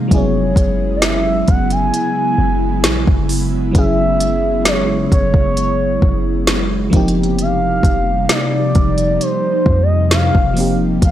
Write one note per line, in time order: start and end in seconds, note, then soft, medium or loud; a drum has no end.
0.00 6.89 G#3 medium
0.00 downlifter medium
0.08 0.55 F#1 loud
0.08 6.89 C#3 medium
0.08 3.69 F#3 medium
0.08 6.89 F#3 medium
0.08 0.17 A#3 soft
0.08 6.89 B3 medium
0.08 3.71 C#4 medium
0.08 6.89 E4 medium
0.08 kick loud
0.08 closed hi-hat medium
0.13 3.72 B3 medium
0.13 3.72 E4 medium
0.13 3.72 G#4 medium
0.13 0.98 C#5 medium
0.56 1.44 F#1 loud
0.56 kick medium
0.56 closed hi-hat medium
0.97 1.05 D#5 medium
1.02 1.48 E5 loud
1.02 snare loud
1.02 closed hi-hat medium
1.48 1.91 F#1 loud
1.48 1.73 F#5 loud
1.48 kick loud
1.48 closed hi-hat medium
1.70 3.30 G#5 loud
1.70 closed hi-hat medium
1.94 closed hi-hat medium
2.38 2.85 F#1 loud
2.84 3.05 A#1 loud
2.84 snare loud
2.84 closed hi-hat medium
3.07 3.72 F#1 loud
3.07 kick medium
3.29 open hi-hat medium
3.71 5.07 F#1 loud
3.71 6.87 F#3 medium
3.71 6.88 B3 medium
3.71 6.89 C#4 medium
3.71 kick loud
3.71 closed hi-hat medium
3.77 6.90 E4 medium
3.77 6.91 G#4 medium
3.77 4.69 E5 loud
4.20 closed hi-hat medium
4.65 5.12 C#5 loud
4.65 snare loud
4.65 closed hi-hat medium
5.12 5.99 F#1 loud
5.12 6.90 C#5 loud
5.12 kick loud
5.12 closed hi-hat medium
5.34 kick loud
5.57 closed hi-hat medium
6.02 6.89 F#1 loud
6.02 kick medium
6.47 snare loud
6.47 closed hi-hat medium
6.90 7.80 F1 loud
6.90 11.11 C3 medium
6.90 10.51 F3 medium
6.90 11.11 F3 medium
6.90 11.11 G3 medium
6.90 10.52 A#3 medium
6.90 11.11 A#3 medium
6.90 10.53 C4 medium
6.90 10.53 D#4 loud
6.90 kick loud
6.90 closed hi-hat medium
6.90 open hi-hat medium
6.95 10.54 D#4 medium
6.95 10.54 G4 medium
7.08 closed hi-hat medium
7.23 closed hi-hat soft
7.39 8.33 F5 loud
7.39 closed hi-hat medium
7.83 8.27 F1 loud
7.83 kick medium
7.83 closed hi-hat medium
8.29 9.24 D5 medium
8.29 snare loud
8.29 closed hi-hat medium
8.75 9.19 F1 loud
8.75 kick loud
8.75 closed hi-hat medium
8.98 closed hi-hat medium
9.21 9.84 C5 loud
9.21 closed hi-hat medium
9.66 10.31 F2 loud
9.66 kick medium
9.83 10.12 D#5 medium
10.11 10.76 F5 loud
10.11 snare loud
10.11 closed hi-hat medium
10.35 11.00 F1 loud
10.35 kick medium
10.54 11.11 F3 medium
10.54 11.11 A#3 medium
10.54 11.11 C4 medium
10.54 11.11 F4 loud
10.54 open hi-hat medium
10.59 11.11 D#4 medium
10.59 11.11 G4 medium
11.02 11.11 F1 loud
11.02 11.11 F5 loud
11.02 kick loud
11.02 closed hi-hat medium